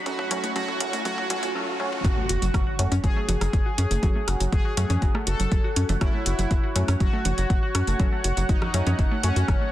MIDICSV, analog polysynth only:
0, 0, Header, 1, 2, 480
1, 0, Start_track
1, 0, Key_signature, 3, "minor"
1, 0, Tempo, 495868
1, 60, Time_signature, 4, 2, 24, 8
1, 9407, End_track
2, 0, Start_track
2, 0, Title_t, "Analog polysynth"
2, 0, Program_c, 0, 90
2, 58, Note_on_c, 0, 66, 104
2, 280, Note_off_c, 0, 66, 0
2, 299, Note_on_c, 0, 66, 101
2, 520, Note_off_c, 0, 66, 0
2, 539, Note_on_c, 0, 66, 110
2, 760, Note_off_c, 0, 66, 0
2, 779, Note_on_c, 0, 66, 104
2, 1000, Note_off_c, 0, 66, 0
2, 1019, Note_on_c, 0, 66, 103
2, 1241, Note_off_c, 0, 66, 0
2, 1259, Note_on_c, 0, 66, 107
2, 1481, Note_off_c, 0, 66, 0
2, 1979, Note_on_c, 0, 66, 114
2, 2846, Note_off_c, 0, 66, 0
2, 2941, Note_on_c, 0, 68, 108
2, 4287, Note_off_c, 0, 68, 0
2, 4380, Note_on_c, 0, 68, 104
2, 5006, Note_off_c, 0, 68, 0
2, 5099, Note_on_c, 0, 69, 97
2, 5726, Note_off_c, 0, 69, 0
2, 5820, Note_on_c, 0, 64, 115
2, 6686, Note_off_c, 0, 64, 0
2, 6782, Note_on_c, 0, 66, 106
2, 8127, Note_off_c, 0, 66, 0
2, 8220, Note_on_c, 0, 63, 105
2, 8846, Note_off_c, 0, 63, 0
2, 8939, Note_on_c, 0, 61, 99
2, 9407, Note_off_c, 0, 61, 0
2, 9407, End_track
0, 0, End_of_file